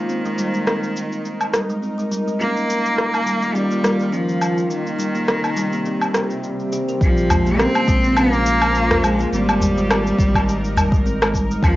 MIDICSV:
0, 0, Header, 1, 7, 480
1, 0, Start_track
1, 0, Tempo, 576923
1, 76, Time_signature, 4, 2, 24, 8
1, 9786, End_track
2, 0, Start_track
2, 0, Title_t, "Synth drone"
2, 0, Program_c, 0, 95
2, 77, Note_on_c, 0, 70, 80
2, 80, Note_on_c, 0, 63, 63
2, 1977, Note_off_c, 0, 70, 0
2, 1979, Note_off_c, 0, 63, 0
2, 2000, Note_on_c, 0, 51, 69
2, 2000, Note_on_c, 0, 65, 79
2, 2005, Note_on_c, 0, 58, 70
2, 3899, Note_off_c, 0, 51, 0
2, 3899, Note_off_c, 0, 65, 0
2, 3901, Note_off_c, 0, 58, 0
2, 3920, Note_on_c, 0, 48, 75
2, 3920, Note_on_c, 0, 60, 78
2, 3921, Note_on_c, 0, 55, 66
2, 5819, Note_off_c, 0, 48, 0
2, 5819, Note_off_c, 0, 55, 0
2, 5819, Note_off_c, 0, 60, 0
2, 5840, Note_on_c, 0, 65, 69
2, 5841, Note_on_c, 0, 72, 83
2, 5842, Note_on_c, 0, 58, 75
2, 7739, Note_off_c, 0, 65, 0
2, 7739, Note_off_c, 0, 72, 0
2, 7740, Note_off_c, 0, 58, 0
2, 7760, Note_on_c, 0, 63, 73
2, 7761, Note_on_c, 0, 70, 85
2, 9659, Note_off_c, 0, 63, 0
2, 9659, Note_off_c, 0, 70, 0
2, 9675, Note_on_c, 0, 58, 73
2, 9678, Note_on_c, 0, 65, 85
2, 9679, Note_on_c, 0, 51, 79
2, 9786, Note_off_c, 0, 51, 0
2, 9786, Note_off_c, 0, 58, 0
2, 9786, Note_off_c, 0, 65, 0
2, 9786, End_track
3, 0, Start_track
3, 0, Title_t, "Kalimba"
3, 0, Program_c, 1, 108
3, 80, Note_on_c, 1, 60, 69
3, 153, Note_off_c, 1, 60, 0
3, 212, Note_on_c, 1, 56, 71
3, 312, Note_off_c, 1, 56, 0
3, 321, Note_on_c, 1, 55, 88
3, 393, Note_off_c, 1, 55, 0
3, 451, Note_on_c, 1, 56, 70
3, 552, Note_off_c, 1, 56, 0
3, 555, Note_on_c, 1, 60, 86
3, 680, Note_off_c, 1, 60, 0
3, 1279, Note_on_c, 1, 55, 68
3, 1396, Note_off_c, 1, 55, 0
3, 1410, Note_on_c, 1, 56, 67
3, 1506, Note_off_c, 1, 56, 0
3, 1517, Note_on_c, 1, 60, 69
3, 1592, Note_off_c, 1, 60, 0
3, 1646, Note_on_c, 1, 56, 70
3, 1750, Note_off_c, 1, 56, 0
3, 1758, Note_on_c, 1, 55, 84
3, 1832, Note_off_c, 1, 55, 0
3, 1893, Note_on_c, 1, 56, 61
3, 1993, Note_off_c, 1, 56, 0
3, 2000, Note_on_c, 1, 61, 80
3, 2123, Note_off_c, 1, 61, 0
3, 2715, Note_on_c, 1, 55, 67
3, 2834, Note_off_c, 1, 55, 0
3, 2849, Note_on_c, 1, 58, 70
3, 2946, Note_off_c, 1, 58, 0
3, 2955, Note_on_c, 1, 61, 74
3, 3030, Note_off_c, 1, 61, 0
3, 3085, Note_on_c, 1, 58, 69
3, 3189, Note_off_c, 1, 58, 0
3, 3195, Note_on_c, 1, 55, 84
3, 3270, Note_off_c, 1, 55, 0
3, 3325, Note_on_c, 1, 58, 69
3, 3429, Note_off_c, 1, 58, 0
3, 3432, Note_on_c, 1, 61, 90
3, 3559, Note_off_c, 1, 61, 0
3, 4150, Note_on_c, 1, 55, 66
3, 4271, Note_off_c, 1, 55, 0
3, 4285, Note_on_c, 1, 58, 73
3, 4384, Note_off_c, 1, 58, 0
3, 4394, Note_on_c, 1, 60, 70
3, 4470, Note_off_c, 1, 60, 0
3, 4527, Note_on_c, 1, 58, 68
3, 4630, Note_off_c, 1, 58, 0
3, 4635, Note_on_c, 1, 55, 91
3, 4711, Note_off_c, 1, 55, 0
3, 4769, Note_on_c, 1, 58, 76
3, 4871, Note_off_c, 1, 58, 0
3, 4879, Note_on_c, 1, 60, 85
3, 5003, Note_off_c, 1, 60, 0
3, 5118, Note_on_c, 1, 67, 70
3, 5235, Note_off_c, 1, 67, 0
3, 5597, Note_on_c, 1, 67, 88
3, 5715, Note_off_c, 1, 67, 0
3, 5729, Note_on_c, 1, 70, 65
3, 5831, Note_off_c, 1, 70, 0
3, 6078, Note_on_c, 1, 56, 70
3, 6195, Note_off_c, 1, 56, 0
3, 6212, Note_on_c, 1, 58, 76
3, 6307, Note_off_c, 1, 58, 0
3, 6318, Note_on_c, 1, 61, 74
3, 6392, Note_off_c, 1, 61, 0
3, 6446, Note_on_c, 1, 58, 78
3, 6549, Note_off_c, 1, 58, 0
3, 6557, Note_on_c, 1, 56, 107
3, 6631, Note_off_c, 1, 56, 0
3, 6691, Note_on_c, 1, 58, 75
3, 6792, Note_off_c, 1, 58, 0
3, 6796, Note_on_c, 1, 61, 97
3, 6921, Note_off_c, 1, 61, 0
3, 7515, Note_on_c, 1, 56, 74
3, 7634, Note_off_c, 1, 56, 0
3, 7647, Note_on_c, 1, 58, 70
3, 7745, Note_off_c, 1, 58, 0
3, 7758, Note_on_c, 1, 60, 77
3, 7832, Note_off_c, 1, 60, 0
3, 7891, Note_on_c, 1, 56, 70
3, 7992, Note_off_c, 1, 56, 0
3, 7998, Note_on_c, 1, 55, 90
3, 8072, Note_off_c, 1, 55, 0
3, 8133, Note_on_c, 1, 56, 78
3, 8233, Note_off_c, 1, 56, 0
3, 8239, Note_on_c, 1, 60, 95
3, 8363, Note_off_c, 1, 60, 0
3, 8959, Note_on_c, 1, 55, 74
3, 9076, Note_off_c, 1, 55, 0
3, 9087, Note_on_c, 1, 56, 75
3, 9185, Note_off_c, 1, 56, 0
3, 9200, Note_on_c, 1, 60, 83
3, 9273, Note_off_c, 1, 60, 0
3, 9334, Note_on_c, 1, 56, 79
3, 9433, Note_off_c, 1, 56, 0
3, 9446, Note_on_c, 1, 55, 99
3, 9516, Note_off_c, 1, 55, 0
3, 9578, Note_on_c, 1, 56, 71
3, 9675, Note_off_c, 1, 56, 0
3, 9682, Note_on_c, 1, 61, 91
3, 9786, Note_off_c, 1, 61, 0
3, 9786, End_track
4, 0, Start_track
4, 0, Title_t, "Cello"
4, 0, Program_c, 2, 42
4, 0, Note_on_c, 2, 51, 83
4, 1279, Note_off_c, 2, 51, 0
4, 1989, Note_on_c, 2, 58, 106
4, 2953, Note_on_c, 2, 55, 94
4, 2965, Note_off_c, 2, 58, 0
4, 3433, Note_on_c, 2, 53, 87
4, 3445, Note_off_c, 2, 55, 0
4, 3914, Note_on_c, 2, 51, 84
4, 3926, Note_off_c, 2, 53, 0
4, 5355, Note_off_c, 2, 51, 0
4, 5851, Note_on_c, 2, 53, 98
4, 6326, Note_on_c, 2, 60, 107
4, 6338, Note_off_c, 2, 53, 0
4, 6799, Note_on_c, 2, 58, 115
4, 6812, Note_off_c, 2, 60, 0
4, 7520, Note_on_c, 2, 56, 102
4, 7532, Note_off_c, 2, 58, 0
4, 7752, Note_off_c, 2, 56, 0
4, 7757, Note_on_c, 2, 55, 97
4, 9163, Note_off_c, 2, 55, 0
4, 9676, Note_on_c, 2, 53, 104
4, 9786, Note_off_c, 2, 53, 0
4, 9786, End_track
5, 0, Start_track
5, 0, Title_t, "Analog synth bass"
5, 0, Program_c, 3, 38
5, 5833, Note_on_c, 3, 34, 97
5, 6376, Note_off_c, 3, 34, 0
5, 6553, Note_on_c, 3, 34, 88
5, 7697, Note_off_c, 3, 34, 0
5, 7756, Note_on_c, 3, 32, 88
5, 8418, Note_off_c, 3, 32, 0
5, 8473, Note_on_c, 3, 32, 92
5, 9617, Note_off_c, 3, 32, 0
5, 9674, Note_on_c, 3, 39, 99
5, 9786, Note_off_c, 3, 39, 0
5, 9786, End_track
6, 0, Start_track
6, 0, Title_t, "Udu"
6, 6075, Note_on_c, 9, 64, 95
6, 6159, Note_off_c, 9, 64, 0
6, 7409, Note_on_c, 9, 64, 74
6, 7492, Note_off_c, 9, 64, 0
6, 7993, Note_on_c, 9, 64, 90
6, 8076, Note_off_c, 9, 64, 0
6, 8954, Note_on_c, 9, 64, 87
6, 9037, Note_off_c, 9, 64, 0
6, 9786, End_track
7, 0, Start_track
7, 0, Title_t, "Drums"
7, 77, Note_on_c, 9, 69, 35
7, 160, Note_off_c, 9, 69, 0
7, 211, Note_on_c, 9, 69, 27
7, 294, Note_off_c, 9, 69, 0
7, 318, Note_on_c, 9, 69, 68
7, 401, Note_off_c, 9, 69, 0
7, 453, Note_on_c, 9, 69, 27
7, 536, Note_off_c, 9, 69, 0
7, 559, Note_on_c, 9, 37, 64
7, 560, Note_on_c, 9, 69, 35
7, 642, Note_off_c, 9, 37, 0
7, 643, Note_off_c, 9, 69, 0
7, 694, Note_on_c, 9, 69, 23
7, 777, Note_off_c, 9, 69, 0
7, 801, Note_on_c, 9, 69, 61
7, 884, Note_off_c, 9, 69, 0
7, 933, Note_on_c, 9, 69, 28
7, 1017, Note_off_c, 9, 69, 0
7, 1041, Note_on_c, 9, 69, 37
7, 1124, Note_off_c, 9, 69, 0
7, 1170, Note_on_c, 9, 77, 53
7, 1171, Note_on_c, 9, 69, 27
7, 1253, Note_off_c, 9, 77, 0
7, 1254, Note_off_c, 9, 69, 0
7, 1277, Note_on_c, 9, 37, 68
7, 1278, Note_on_c, 9, 69, 69
7, 1360, Note_off_c, 9, 37, 0
7, 1361, Note_off_c, 9, 69, 0
7, 1412, Note_on_c, 9, 69, 27
7, 1495, Note_off_c, 9, 69, 0
7, 1521, Note_on_c, 9, 69, 33
7, 1605, Note_off_c, 9, 69, 0
7, 1656, Note_on_c, 9, 69, 27
7, 1739, Note_off_c, 9, 69, 0
7, 1762, Note_on_c, 9, 69, 64
7, 1845, Note_off_c, 9, 69, 0
7, 1894, Note_on_c, 9, 69, 27
7, 1977, Note_off_c, 9, 69, 0
7, 2000, Note_on_c, 9, 69, 35
7, 2084, Note_off_c, 9, 69, 0
7, 2136, Note_on_c, 9, 69, 27
7, 2219, Note_off_c, 9, 69, 0
7, 2245, Note_on_c, 9, 69, 66
7, 2328, Note_off_c, 9, 69, 0
7, 2377, Note_on_c, 9, 69, 28
7, 2460, Note_off_c, 9, 69, 0
7, 2482, Note_on_c, 9, 37, 63
7, 2483, Note_on_c, 9, 69, 36
7, 2565, Note_off_c, 9, 37, 0
7, 2566, Note_off_c, 9, 69, 0
7, 2613, Note_on_c, 9, 77, 49
7, 2614, Note_on_c, 9, 69, 25
7, 2696, Note_off_c, 9, 77, 0
7, 2697, Note_off_c, 9, 69, 0
7, 2719, Note_on_c, 9, 69, 61
7, 2802, Note_off_c, 9, 69, 0
7, 2850, Note_on_c, 9, 69, 28
7, 2933, Note_off_c, 9, 69, 0
7, 2958, Note_on_c, 9, 69, 37
7, 3042, Note_off_c, 9, 69, 0
7, 3089, Note_on_c, 9, 69, 26
7, 3172, Note_off_c, 9, 69, 0
7, 3197, Note_on_c, 9, 37, 71
7, 3198, Note_on_c, 9, 69, 68
7, 3280, Note_off_c, 9, 37, 0
7, 3281, Note_off_c, 9, 69, 0
7, 3330, Note_on_c, 9, 69, 28
7, 3413, Note_off_c, 9, 69, 0
7, 3439, Note_on_c, 9, 69, 35
7, 3522, Note_off_c, 9, 69, 0
7, 3568, Note_on_c, 9, 69, 27
7, 3651, Note_off_c, 9, 69, 0
7, 3674, Note_on_c, 9, 77, 52
7, 3675, Note_on_c, 9, 69, 64
7, 3757, Note_off_c, 9, 77, 0
7, 3758, Note_off_c, 9, 69, 0
7, 3808, Note_on_c, 9, 69, 28
7, 3891, Note_off_c, 9, 69, 0
7, 3915, Note_on_c, 9, 69, 37
7, 3999, Note_off_c, 9, 69, 0
7, 4050, Note_on_c, 9, 69, 29
7, 4133, Note_off_c, 9, 69, 0
7, 4157, Note_on_c, 9, 69, 66
7, 4240, Note_off_c, 9, 69, 0
7, 4285, Note_on_c, 9, 69, 28
7, 4369, Note_off_c, 9, 69, 0
7, 4395, Note_on_c, 9, 37, 68
7, 4396, Note_on_c, 9, 69, 36
7, 4479, Note_off_c, 9, 37, 0
7, 4480, Note_off_c, 9, 69, 0
7, 4526, Note_on_c, 9, 77, 49
7, 4527, Note_on_c, 9, 69, 25
7, 4610, Note_off_c, 9, 77, 0
7, 4611, Note_off_c, 9, 69, 0
7, 4632, Note_on_c, 9, 69, 66
7, 4715, Note_off_c, 9, 69, 0
7, 4764, Note_on_c, 9, 69, 28
7, 4848, Note_off_c, 9, 69, 0
7, 4871, Note_on_c, 9, 69, 36
7, 4954, Note_off_c, 9, 69, 0
7, 5005, Note_on_c, 9, 69, 27
7, 5005, Note_on_c, 9, 77, 59
7, 5088, Note_off_c, 9, 77, 0
7, 5089, Note_off_c, 9, 69, 0
7, 5112, Note_on_c, 9, 37, 72
7, 5113, Note_on_c, 9, 69, 68
7, 5195, Note_off_c, 9, 37, 0
7, 5196, Note_off_c, 9, 69, 0
7, 5245, Note_on_c, 9, 69, 29
7, 5328, Note_off_c, 9, 69, 0
7, 5354, Note_on_c, 9, 69, 34
7, 5437, Note_off_c, 9, 69, 0
7, 5487, Note_on_c, 9, 69, 25
7, 5570, Note_off_c, 9, 69, 0
7, 5594, Note_on_c, 9, 69, 62
7, 5677, Note_off_c, 9, 69, 0
7, 5729, Note_on_c, 9, 69, 29
7, 5812, Note_off_c, 9, 69, 0
7, 5833, Note_on_c, 9, 36, 116
7, 5839, Note_on_c, 9, 69, 44
7, 5916, Note_off_c, 9, 36, 0
7, 5922, Note_off_c, 9, 69, 0
7, 5969, Note_on_c, 9, 69, 31
7, 6052, Note_off_c, 9, 69, 0
7, 6075, Note_on_c, 9, 77, 80
7, 6076, Note_on_c, 9, 69, 77
7, 6158, Note_off_c, 9, 77, 0
7, 6159, Note_off_c, 9, 69, 0
7, 6211, Note_on_c, 9, 69, 31
7, 6294, Note_off_c, 9, 69, 0
7, 6318, Note_on_c, 9, 37, 74
7, 6319, Note_on_c, 9, 69, 43
7, 6401, Note_off_c, 9, 37, 0
7, 6402, Note_off_c, 9, 69, 0
7, 6450, Note_on_c, 9, 77, 75
7, 6451, Note_on_c, 9, 69, 30
7, 6533, Note_off_c, 9, 77, 0
7, 6534, Note_off_c, 9, 69, 0
7, 6554, Note_on_c, 9, 36, 101
7, 6556, Note_on_c, 9, 69, 73
7, 6637, Note_off_c, 9, 36, 0
7, 6639, Note_off_c, 9, 69, 0
7, 6688, Note_on_c, 9, 69, 31
7, 6771, Note_off_c, 9, 69, 0
7, 6794, Note_on_c, 9, 77, 82
7, 6795, Note_on_c, 9, 69, 44
7, 6877, Note_off_c, 9, 77, 0
7, 6878, Note_off_c, 9, 69, 0
7, 6930, Note_on_c, 9, 69, 29
7, 7013, Note_off_c, 9, 69, 0
7, 7039, Note_on_c, 9, 69, 78
7, 7122, Note_off_c, 9, 69, 0
7, 7169, Note_on_c, 9, 77, 76
7, 7170, Note_on_c, 9, 69, 32
7, 7252, Note_off_c, 9, 77, 0
7, 7253, Note_off_c, 9, 69, 0
7, 7279, Note_on_c, 9, 69, 40
7, 7362, Note_off_c, 9, 69, 0
7, 7412, Note_on_c, 9, 37, 77
7, 7413, Note_on_c, 9, 69, 31
7, 7496, Note_off_c, 9, 37, 0
7, 7497, Note_off_c, 9, 69, 0
7, 7520, Note_on_c, 9, 77, 84
7, 7521, Note_on_c, 9, 69, 74
7, 7604, Note_off_c, 9, 69, 0
7, 7604, Note_off_c, 9, 77, 0
7, 7654, Note_on_c, 9, 69, 31
7, 7738, Note_off_c, 9, 69, 0
7, 7765, Note_on_c, 9, 69, 44
7, 7848, Note_off_c, 9, 69, 0
7, 7894, Note_on_c, 9, 77, 81
7, 7895, Note_on_c, 9, 69, 32
7, 7977, Note_off_c, 9, 77, 0
7, 7978, Note_off_c, 9, 69, 0
7, 8003, Note_on_c, 9, 69, 80
7, 8086, Note_off_c, 9, 69, 0
7, 8134, Note_on_c, 9, 69, 32
7, 8217, Note_off_c, 9, 69, 0
7, 8241, Note_on_c, 9, 37, 76
7, 8241, Note_on_c, 9, 77, 77
7, 8242, Note_on_c, 9, 69, 46
7, 8324, Note_off_c, 9, 37, 0
7, 8324, Note_off_c, 9, 77, 0
7, 8325, Note_off_c, 9, 69, 0
7, 8377, Note_on_c, 9, 69, 31
7, 8460, Note_off_c, 9, 69, 0
7, 8474, Note_on_c, 9, 36, 108
7, 8483, Note_on_c, 9, 69, 77
7, 8558, Note_off_c, 9, 36, 0
7, 8566, Note_off_c, 9, 69, 0
7, 8606, Note_on_c, 9, 36, 61
7, 8615, Note_on_c, 9, 77, 76
7, 8616, Note_on_c, 9, 69, 33
7, 8689, Note_off_c, 9, 36, 0
7, 8698, Note_off_c, 9, 77, 0
7, 8699, Note_off_c, 9, 69, 0
7, 8726, Note_on_c, 9, 69, 43
7, 8809, Note_off_c, 9, 69, 0
7, 8856, Note_on_c, 9, 69, 32
7, 8940, Note_off_c, 9, 69, 0
7, 8964, Note_on_c, 9, 77, 86
7, 8965, Note_on_c, 9, 69, 83
7, 9047, Note_off_c, 9, 77, 0
7, 9048, Note_off_c, 9, 69, 0
7, 9085, Note_on_c, 9, 36, 106
7, 9098, Note_on_c, 9, 69, 33
7, 9168, Note_off_c, 9, 36, 0
7, 9181, Note_off_c, 9, 69, 0
7, 9206, Note_on_c, 9, 69, 42
7, 9290, Note_off_c, 9, 69, 0
7, 9336, Note_on_c, 9, 37, 81
7, 9336, Note_on_c, 9, 77, 82
7, 9337, Note_on_c, 9, 69, 31
7, 9419, Note_off_c, 9, 37, 0
7, 9419, Note_off_c, 9, 77, 0
7, 9420, Note_off_c, 9, 69, 0
7, 9433, Note_on_c, 9, 36, 64
7, 9442, Note_on_c, 9, 69, 76
7, 9516, Note_off_c, 9, 36, 0
7, 9525, Note_off_c, 9, 69, 0
7, 9577, Note_on_c, 9, 69, 33
7, 9660, Note_off_c, 9, 69, 0
7, 9673, Note_on_c, 9, 36, 111
7, 9682, Note_on_c, 9, 77, 74
7, 9683, Note_on_c, 9, 69, 48
7, 9756, Note_off_c, 9, 36, 0
7, 9765, Note_off_c, 9, 77, 0
7, 9766, Note_off_c, 9, 69, 0
7, 9786, End_track
0, 0, End_of_file